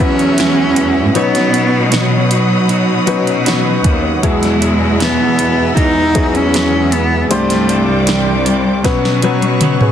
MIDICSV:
0, 0, Header, 1, 7, 480
1, 0, Start_track
1, 0, Key_signature, 4, "major"
1, 0, Tempo, 769231
1, 720, Time_signature, 4, 2, 24, 8
1, 6189, End_track
2, 0, Start_track
2, 0, Title_t, "String section"
2, 0, Program_c, 0, 48
2, 0, Note_on_c, 0, 71, 64
2, 0, Note_on_c, 0, 78, 65
2, 0, Note_on_c, 0, 80, 63
2, 0, Note_on_c, 0, 88, 71
2, 699, Note_off_c, 0, 71, 0
2, 699, Note_off_c, 0, 80, 0
2, 701, Note_off_c, 0, 88, 0
2, 728, Note_on_c, 0, 83, 64
2, 730, Note_on_c, 0, 73, 67
2, 730, Note_on_c, 0, 87, 76
2, 2625, Note_off_c, 0, 83, 0
2, 2626, Note_off_c, 0, 73, 0
2, 2626, Note_off_c, 0, 87, 0
2, 2638, Note_on_c, 0, 71, 69
2, 2638, Note_on_c, 0, 80, 61
2, 2641, Note_on_c, 0, 88, 71
2, 4533, Note_off_c, 0, 78, 0
2, 4540, Note_off_c, 0, 71, 0
2, 4540, Note_off_c, 0, 80, 0
2, 4541, Note_off_c, 0, 88, 0
2, 4558, Note_on_c, 0, 74, 62
2, 4558, Note_on_c, 0, 86, 71
2, 4560, Note_on_c, 0, 79, 68
2, 4561, Note_on_c, 0, 72, 67
2, 5509, Note_off_c, 0, 74, 0
2, 5509, Note_off_c, 0, 86, 0
2, 5510, Note_off_c, 0, 79, 0
2, 5511, Note_off_c, 0, 72, 0
2, 5533, Note_on_c, 0, 71, 66
2, 5533, Note_on_c, 0, 78, 62
2, 5535, Note_on_c, 0, 73, 65
2, 5539, Note_on_c, 0, 85, 83
2, 6189, Note_off_c, 0, 71, 0
2, 6189, Note_off_c, 0, 73, 0
2, 6189, Note_off_c, 0, 78, 0
2, 6189, Note_off_c, 0, 85, 0
2, 6189, End_track
3, 0, Start_track
3, 0, Title_t, "Clean electric guitar"
3, 0, Program_c, 1, 27
3, 0, Note_on_c, 1, 64, 51
3, 4, Note_on_c, 1, 66, 44
3, 10, Note_on_c, 1, 59, 45
3, 14, Note_on_c, 1, 56, 37
3, 237, Note_off_c, 1, 56, 0
3, 239, Note_off_c, 1, 59, 0
3, 239, Note_off_c, 1, 64, 0
3, 240, Note_off_c, 1, 66, 0
3, 240, Note_on_c, 1, 40, 77
3, 242, Note_on_c, 1, 52, 82
3, 244, Note_on_c, 1, 56, 80
3, 246, Note_on_c, 1, 59, 84
3, 248, Note_on_c, 1, 66, 91
3, 250, Note_on_c, 1, 64, 90
3, 712, Note_off_c, 1, 56, 0
3, 715, Note_off_c, 1, 59, 0
3, 715, Note_on_c, 1, 59, 74
3, 719, Note_on_c, 1, 63, 68
3, 720, Note_off_c, 1, 40, 0
3, 721, Note_off_c, 1, 52, 0
3, 722, Note_off_c, 1, 66, 0
3, 725, Note_off_c, 1, 64, 0
3, 725, Note_on_c, 1, 66, 80
3, 729, Note_on_c, 1, 73, 72
3, 947, Note_off_c, 1, 73, 0
3, 954, Note_on_c, 1, 73, 54
3, 957, Note_off_c, 1, 59, 0
3, 957, Note_off_c, 1, 66, 0
3, 960, Note_off_c, 1, 63, 0
3, 965, Note_on_c, 1, 66, 41
3, 973, Note_on_c, 1, 63, 42
3, 1192, Note_off_c, 1, 63, 0
3, 1194, Note_on_c, 1, 59, 74
3, 1197, Note_off_c, 1, 66, 0
3, 1197, Note_off_c, 1, 73, 0
3, 1200, Note_on_c, 1, 63, 78
3, 1204, Note_on_c, 1, 66, 74
3, 1206, Note_on_c, 1, 73, 80
3, 1431, Note_off_c, 1, 73, 0
3, 1437, Note_off_c, 1, 59, 0
3, 1439, Note_on_c, 1, 73, 52
3, 1440, Note_off_c, 1, 63, 0
3, 1440, Note_off_c, 1, 66, 0
3, 1447, Note_on_c, 1, 66, 46
3, 1455, Note_on_c, 1, 63, 47
3, 1674, Note_off_c, 1, 63, 0
3, 1674, Note_on_c, 1, 59, 60
3, 1678, Note_off_c, 1, 66, 0
3, 1679, Note_off_c, 1, 73, 0
3, 1681, Note_on_c, 1, 63, 67
3, 1686, Note_on_c, 1, 66, 62
3, 1691, Note_on_c, 1, 73, 66
3, 1907, Note_off_c, 1, 73, 0
3, 1914, Note_on_c, 1, 73, 57
3, 1917, Note_off_c, 1, 59, 0
3, 1918, Note_off_c, 1, 66, 0
3, 1921, Note_off_c, 1, 63, 0
3, 1925, Note_on_c, 1, 66, 51
3, 1931, Note_on_c, 1, 63, 45
3, 2154, Note_off_c, 1, 63, 0
3, 2156, Note_off_c, 1, 66, 0
3, 2157, Note_off_c, 1, 73, 0
3, 2157, Note_on_c, 1, 59, 86
3, 2161, Note_on_c, 1, 63, 87
3, 2163, Note_on_c, 1, 66, 90
3, 2167, Note_on_c, 1, 73, 94
3, 2638, Note_on_c, 1, 40, 71
3, 2639, Note_off_c, 1, 59, 0
3, 2641, Note_off_c, 1, 63, 0
3, 2641, Note_on_c, 1, 52, 81
3, 2642, Note_on_c, 1, 56, 84
3, 2643, Note_off_c, 1, 66, 0
3, 2644, Note_off_c, 1, 73, 0
3, 2644, Note_on_c, 1, 59, 78
3, 2646, Note_on_c, 1, 66, 92
3, 2650, Note_on_c, 1, 64, 73
3, 2863, Note_off_c, 1, 64, 0
3, 2871, Note_off_c, 1, 66, 0
3, 2871, Note_on_c, 1, 64, 48
3, 2876, Note_off_c, 1, 59, 0
3, 2879, Note_off_c, 1, 40, 0
3, 2879, Note_on_c, 1, 66, 48
3, 2880, Note_off_c, 1, 52, 0
3, 2881, Note_off_c, 1, 56, 0
3, 2884, Note_on_c, 1, 59, 46
3, 2890, Note_on_c, 1, 56, 44
3, 3112, Note_off_c, 1, 56, 0
3, 3114, Note_on_c, 1, 40, 74
3, 3116, Note_off_c, 1, 59, 0
3, 3116, Note_off_c, 1, 64, 0
3, 3117, Note_on_c, 1, 52, 72
3, 3119, Note_off_c, 1, 66, 0
3, 3120, Note_on_c, 1, 56, 84
3, 3123, Note_on_c, 1, 59, 76
3, 3126, Note_on_c, 1, 66, 87
3, 3127, Note_on_c, 1, 64, 75
3, 3350, Note_off_c, 1, 64, 0
3, 3356, Note_off_c, 1, 66, 0
3, 3357, Note_off_c, 1, 40, 0
3, 3357, Note_on_c, 1, 64, 49
3, 3358, Note_off_c, 1, 52, 0
3, 3360, Note_off_c, 1, 56, 0
3, 3362, Note_off_c, 1, 59, 0
3, 3364, Note_on_c, 1, 66, 47
3, 3368, Note_on_c, 1, 59, 45
3, 3373, Note_on_c, 1, 56, 44
3, 3585, Note_off_c, 1, 56, 0
3, 3593, Note_off_c, 1, 59, 0
3, 3593, Note_on_c, 1, 56, 69
3, 3599, Note_off_c, 1, 64, 0
3, 3599, Note_off_c, 1, 66, 0
3, 3600, Note_on_c, 1, 59, 67
3, 3606, Note_on_c, 1, 66, 66
3, 3834, Note_off_c, 1, 66, 0
3, 3835, Note_on_c, 1, 64, 51
3, 3836, Note_off_c, 1, 56, 0
3, 3840, Note_off_c, 1, 59, 0
3, 3841, Note_on_c, 1, 66, 41
3, 3847, Note_on_c, 1, 59, 39
3, 3852, Note_on_c, 1, 56, 46
3, 4076, Note_off_c, 1, 56, 0
3, 4078, Note_off_c, 1, 64, 0
3, 4079, Note_off_c, 1, 59, 0
3, 4079, Note_on_c, 1, 40, 77
3, 4081, Note_off_c, 1, 66, 0
3, 4082, Note_on_c, 1, 52, 84
3, 4084, Note_on_c, 1, 56, 87
3, 4087, Note_on_c, 1, 59, 87
3, 4088, Note_on_c, 1, 66, 98
3, 4090, Note_on_c, 1, 64, 78
3, 4556, Note_off_c, 1, 52, 0
3, 4557, Note_off_c, 1, 56, 0
3, 4558, Note_on_c, 1, 48, 68
3, 4560, Note_off_c, 1, 40, 0
3, 4560, Note_on_c, 1, 55, 67
3, 4562, Note_off_c, 1, 59, 0
3, 4564, Note_off_c, 1, 66, 0
3, 4565, Note_off_c, 1, 64, 0
3, 4565, Note_on_c, 1, 60, 78
3, 4567, Note_on_c, 1, 62, 76
3, 4570, Note_on_c, 1, 67, 78
3, 4789, Note_off_c, 1, 67, 0
3, 4797, Note_on_c, 1, 67, 51
3, 4798, Note_off_c, 1, 62, 0
3, 4799, Note_off_c, 1, 48, 0
3, 4800, Note_off_c, 1, 55, 0
3, 4802, Note_off_c, 1, 60, 0
3, 4806, Note_on_c, 1, 62, 48
3, 4813, Note_on_c, 1, 60, 42
3, 5038, Note_off_c, 1, 60, 0
3, 5038, Note_off_c, 1, 67, 0
3, 5038, Note_on_c, 1, 48, 64
3, 5040, Note_off_c, 1, 62, 0
3, 5041, Note_on_c, 1, 55, 76
3, 5046, Note_on_c, 1, 60, 71
3, 5048, Note_on_c, 1, 62, 73
3, 5050, Note_on_c, 1, 67, 85
3, 5269, Note_off_c, 1, 67, 0
3, 5277, Note_on_c, 1, 67, 53
3, 5279, Note_off_c, 1, 48, 0
3, 5280, Note_off_c, 1, 62, 0
3, 5281, Note_off_c, 1, 55, 0
3, 5283, Note_off_c, 1, 60, 0
3, 5288, Note_on_c, 1, 62, 45
3, 5295, Note_on_c, 1, 60, 43
3, 5518, Note_off_c, 1, 67, 0
3, 5520, Note_on_c, 1, 54, 65
3, 5524, Note_off_c, 1, 60, 0
3, 5524, Note_off_c, 1, 62, 0
3, 5527, Note_on_c, 1, 59, 74
3, 5532, Note_on_c, 1, 61, 87
3, 5537, Note_on_c, 1, 66, 71
3, 5753, Note_off_c, 1, 66, 0
3, 5760, Note_off_c, 1, 54, 0
3, 5761, Note_on_c, 1, 66, 49
3, 5762, Note_off_c, 1, 61, 0
3, 5764, Note_off_c, 1, 59, 0
3, 5769, Note_on_c, 1, 61, 48
3, 5776, Note_on_c, 1, 59, 41
3, 6000, Note_off_c, 1, 66, 0
3, 6004, Note_off_c, 1, 59, 0
3, 6004, Note_on_c, 1, 47, 88
3, 6005, Note_off_c, 1, 61, 0
3, 6008, Note_on_c, 1, 54, 94
3, 6012, Note_on_c, 1, 59, 89
3, 6015, Note_on_c, 1, 61, 102
3, 6016, Note_on_c, 1, 66, 105
3, 6189, Note_off_c, 1, 47, 0
3, 6189, Note_off_c, 1, 54, 0
3, 6189, Note_off_c, 1, 59, 0
3, 6189, Note_off_c, 1, 61, 0
3, 6189, Note_off_c, 1, 66, 0
3, 6189, End_track
4, 0, Start_track
4, 0, Title_t, "Upright piano"
4, 0, Program_c, 2, 0
4, 0, Control_c, 2, 64, 127
4, 0, Note_on_c, 2, 47, 56
4, 0, Note_on_c, 2, 54, 68
4, 0, Note_on_c, 2, 59, 62
4, 0, Note_on_c, 2, 64, 61
4, 0, Note_on_c, 2, 68, 70
4, 1, Note_on_c, 2, 71, 79
4, 681, Note_off_c, 2, 54, 0
4, 683, Note_off_c, 2, 59, 0
4, 684, Note_off_c, 2, 64, 0
4, 684, Note_off_c, 2, 71, 0
4, 717, Note_on_c, 2, 54, 76
4, 718, Note_on_c, 2, 61, 61
4, 722, Note_on_c, 2, 71, 75
4, 723, Note_on_c, 2, 63, 58
4, 728, Control_c, 2, 64, 0
4, 729, Note_off_c, 2, 47, 0
4, 731, Note_off_c, 2, 68, 0
4, 845, Control_c, 2, 64, 127
4, 1631, Note_off_c, 2, 54, 0
4, 1631, Note_off_c, 2, 61, 0
4, 1633, Note_off_c, 2, 71, 0
4, 1634, Note_off_c, 2, 63, 0
4, 1915, Note_on_c, 2, 54, 83
4, 1920, Note_on_c, 2, 61, 79
4, 1922, Note_on_c, 2, 63, 76
4, 1923, Note_on_c, 2, 71, 101
4, 2601, Note_off_c, 2, 54, 0
4, 2604, Note_off_c, 2, 61, 0
4, 2605, Note_off_c, 2, 63, 0
4, 2606, Note_off_c, 2, 71, 0
4, 2642, Note_on_c, 2, 54, 66
4, 2642, Note_on_c, 2, 59, 64
4, 2642, Note_on_c, 2, 64, 69
4, 2644, Note_on_c, 2, 47, 57
4, 2645, Note_on_c, 2, 68, 75
4, 2649, Control_c, 2, 64, 0
4, 2763, Control_c, 2, 64, 127
4, 3337, Note_off_c, 2, 47, 0
4, 3553, Note_off_c, 2, 54, 0
4, 3553, Note_off_c, 2, 59, 0
4, 3553, Note_off_c, 2, 64, 0
4, 3554, Note_off_c, 2, 68, 0
4, 3835, Note_on_c, 2, 54, 66
4, 3835, Note_on_c, 2, 59, 67
4, 3837, Note_on_c, 2, 64, 64
4, 3840, Note_on_c, 2, 68, 82
4, 4522, Note_off_c, 2, 54, 0
4, 4522, Note_off_c, 2, 59, 0
4, 4522, Note_off_c, 2, 64, 0
4, 4524, Note_off_c, 2, 68, 0
4, 4555, Note_on_c, 2, 55, 67
4, 4557, Note_on_c, 2, 60, 58
4, 4561, Note_on_c, 2, 43, 64
4, 4561, Note_on_c, 2, 72, 81
4, 4562, Note_on_c, 2, 62, 63
4, 4569, Control_c, 2, 64, 0
4, 4680, Control_c, 2, 64, 127
4, 5256, Note_off_c, 2, 43, 0
4, 5470, Note_off_c, 2, 55, 0
4, 5471, Note_off_c, 2, 60, 0
4, 5473, Note_off_c, 2, 62, 0
4, 5473, Note_off_c, 2, 72, 0
4, 5520, Note_on_c, 2, 61, 83
4, 5521, Note_on_c, 2, 54, 83
4, 5521, Note_on_c, 2, 59, 78
4, 5522, Note_on_c, 2, 71, 98
4, 5528, Control_c, 2, 64, 0
4, 5639, Control_c, 2, 64, 127
4, 5748, Note_off_c, 2, 54, 0
4, 5748, Note_off_c, 2, 61, 0
4, 5749, Note_off_c, 2, 59, 0
4, 5749, Note_off_c, 2, 71, 0
4, 5760, Note_on_c, 2, 54, 83
4, 5764, Note_on_c, 2, 59, 74
4, 5765, Note_on_c, 2, 61, 75
4, 5767, Note_on_c, 2, 71, 97
4, 6003, Note_off_c, 2, 71, 0
4, 6126, Note_on_c, 2, 71, 58
4, 6130, Note_on_c, 2, 68, 56
4, 6189, Note_off_c, 2, 54, 0
4, 6189, Note_off_c, 2, 59, 0
4, 6189, Note_off_c, 2, 61, 0
4, 6189, Note_off_c, 2, 68, 0
4, 6189, Note_off_c, 2, 71, 0
4, 6189, End_track
5, 0, Start_track
5, 0, Title_t, "Cello"
5, 0, Program_c, 3, 42
5, 5, Note_on_c, 3, 61, 113
5, 722, Note_off_c, 3, 61, 0
5, 729, Note_on_c, 3, 59, 95
5, 1209, Note_on_c, 3, 54, 85
5, 1218, Note_off_c, 3, 59, 0
5, 2405, Note_off_c, 3, 54, 0
5, 2639, Note_on_c, 3, 56, 91
5, 3119, Note_on_c, 3, 59, 95
5, 3129, Note_off_c, 3, 56, 0
5, 3589, Note_off_c, 3, 59, 0
5, 3592, Note_on_c, 3, 63, 103
5, 3959, Note_on_c, 3, 61, 98
5, 3968, Note_off_c, 3, 63, 0
5, 4318, Note_on_c, 3, 59, 93
5, 4327, Note_off_c, 3, 61, 0
5, 4554, Note_off_c, 3, 59, 0
5, 4558, Note_on_c, 3, 57, 93
5, 4919, Note_on_c, 3, 55, 84
5, 4928, Note_off_c, 3, 57, 0
5, 5639, Note_off_c, 3, 55, 0
5, 6189, End_track
6, 0, Start_track
6, 0, Title_t, "Cello section"
6, 0, Program_c, 4, 48
6, 0, Note_on_c, 4, 40, 101
6, 714, Note_on_c, 4, 47, 111
6, 717, Note_off_c, 4, 40, 0
6, 1652, Note_off_c, 4, 47, 0
6, 1677, Note_on_c, 4, 47, 97
6, 2374, Note_off_c, 4, 47, 0
6, 2399, Note_on_c, 4, 39, 99
6, 2623, Note_off_c, 4, 39, 0
6, 2639, Note_on_c, 4, 40, 109
6, 3575, Note_off_c, 4, 40, 0
6, 3598, Note_on_c, 4, 40, 96
6, 4534, Note_off_c, 4, 40, 0
6, 4561, Note_on_c, 4, 36, 105
6, 5496, Note_off_c, 4, 36, 0
6, 5517, Note_on_c, 4, 47, 92
6, 6189, Note_off_c, 4, 47, 0
6, 6189, End_track
7, 0, Start_track
7, 0, Title_t, "Drums"
7, 0, Note_on_c, 9, 36, 93
7, 63, Note_off_c, 9, 36, 0
7, 120, Note_on_c, 9, 42, 45
7, 183, Note_off_c, 9, 42, 0
7, 237, Note_on_c, 9, 42, 104
7, 249, Note_on_c, 9, 38, 120
7, 299, Note_off_c, 9, 42, 0
7, 312, Note_off_c, 9, 38, 0
7, 477, Note_on_c, 9, 42, 66
7, 539, Note_off_c, 9, 42, 0
7, 719, Note_on_c, 9, 42, 85
7, 781, Note_off_c, 9, 42, 0
7, 842, Note_on_c, 9, 42, 49
7, 852, Note_on_c, 9, 38, 33
7, 904, Note_off_c, 9, 42, 0
7, 914, Note_off_c, 9, 38, 0
7, 960, Note_on_c, 9, 42, 68
7, 1023, Note_off_c, 9, 42, 0
7, 1197, Note_on_c, 9, 42, 85
7, 1209, Note_on_c, 9, 38, 104
7, 1259, Note_off_c, 9, 42, 0
7, 1271, Note_off_c, 9, 38, 0
7, 1440, Note_on_c, 9, 42, 63
7, 1503, Note_off_c, 9, 42, 0
7, 1680, Note_on_c, 9, 42, 84
7, 1743, Note_off_c, 9, 42, 0
7, 1917, Note_on_c, 9, 42, 68
7, 1979, Note_off_c, 9, 42, 0
7, 2043, Note_on_c, 9, 42, 43
7, 2105, Note_off_c, 9, 42, 0
7, 2161, Note_on_c, 9, 42, 97
7, 2173, Note_on_c, 9, 38, 117
7, 2223, Note_off_c, 9, 42, 0
7, 2236, Note_off_c, 9, 38, 0
7, 2398, Note_on_c, 9, 42, 61
7, 2400, Note_on_c, 9, 36, 87
7, 2461, Note_off_c, 9, 42, 0
7, 2463, Note_off_c, 9, 36, 0
7, 2641, Note_on_c, 9, 36, 102
7, 2642, Note_on_c, 9, 42, 94
7, 2703, Note_off_c, 9, 36, 0
7, 2704, Note_off_c, 9, 42, 0
7, 2762, Note_on_c, 9, 42, 55
7, 2772, Note_on_c, 9, 38, 34
7, 2825, Note_off_c, 9, 42, 0
7, 2835, Note_off_c, 9, 38, 0
7, 2883, Note_on_c, 9, 42, 68
7, 2945, Note_off_c, 9, 42, 0
7, 3123, Note_on_c, 9, 42, 94
7, 3134, Note_on_c, 9, 38, 102
7, 3185, Note_off_c, 9, 42, 0
7, 3197, Note_off_c, 9, 38, 0
7, 3362, Note_on_c, 9, 42, 58
7, 3424, Note_off_c, 9, 42, 0
7, 3599, Note_on_c, 9, 36, 96
7, 3601, Note_on_c, 9, 42, 80
7, 3661, Note_off_c, 9, 36, 0
7, 3664, Note_off_c, 9, 42, 0
7, 3837, Note_on_c, 9, 42, 70
7, 3842, Note_on_c, 9, 36, 91
7, 3900, Note_off_c, 9, 42, 0
7, 3904, Note_off_c, 9, 36, 0
7, 3962, Note_on_c, 9, 42, 38
7, 4024, Note_off_c, 9, 42, 0
7, 4081, Note_on_c, 9, 42, 99
7, 4094, Note_on_c, 9, 38, 123
7, 4144, Note_off_c, 9, 42, 0
7, 4156, Note_off_c, 9, 38, 0
7, 4319, Note_on_c, 9, 42, 63
7, 4382, Note_off_c, 9, 42, 0
7, 4559, Note_on_c, 9, 42, 96
7, 4622, Note_off_c, 9, 42, 0
7, 4681, Note_on_c, 9, 42, 52
7, 4691, Note_on_c, 9, 38, 33
7, 4743, Note_off_c, 9, 42, 0
7, 4753, Note_off_c, 9, 38, 0
7, 4800, Note_on_c, 9, 42, 64
7, 4862, Note_off_c, 9, 42, 0
7, 5035, Note_on_c, 9, 42, 90
7, 5047, Note_on_c, 9, 38, 94
7, 5098, Note_off_c, 9, 42, 0
7, 5110, Note_off_c, 9, 38, 0
7, 5279, Note_on_c, 9, 42, 66
7, 5342, Note_off_c, 9, 42, 0
7, 5518, Note_on_c, 9, 36, 90
7, 5519, Note_on_c, 9, 42, 85
7, 5529, Note_on_c, 9, 38, 58
7, 5581, Note_off_c, 9, 36, 0
7, 5582, Note_off_c, 9, 42, 0
7, 5592, Note_off_c, 9, 38, 0
7, 5648, Note_on_c, 9, 38, 52
7, 5711, Note_off_c, 9, 38, 0
7, 5756, Note_on_c, 9, 42, 71
7, 5759, Note_on_c, 9, 48, 69
7, 5818, Note_off_c, 9, 42, 0
7, 5821, Note_off_c, 9, 48, 0
7, 5879, Note_on_c, 9, 48, 57
7, 5880, Note_on_c, 9, 42, 44
7, 5942, Note_off_c, 9, 48, 0
7, 5943, Note_off_c, 9, 42, 0
7, 5995, Note_on_c, 9, 42, 102
7, 5996, Note_on_c, 9, 47, 100
7, 6057, Note_off_c, 9, 42, 0
7, 6058, Note_off_c, 9, 47, 0
7, 6119, Note_on_c, 9, 45, 77
7, 6182, Note_off_c, 9, 45, 0
7, 6189, End_track
0, 0, End_of_file